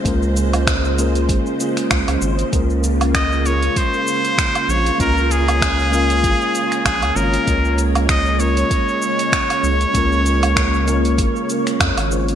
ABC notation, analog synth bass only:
X:1
M:4/4
L:1/16
Q:"Swing 16ths" 1/4=97
K:Db
V:1 name="Analog synth bass" clef=bass
D,,8 A,,, z3 D,, D,, A,,, z | D,,8 z6 B,,, z | D,,8 A,,, z3 B,,, D,, A,,, z | D,,8 z6 D,, z |
D,,8 A,,, z3 F,, A,,,3 |]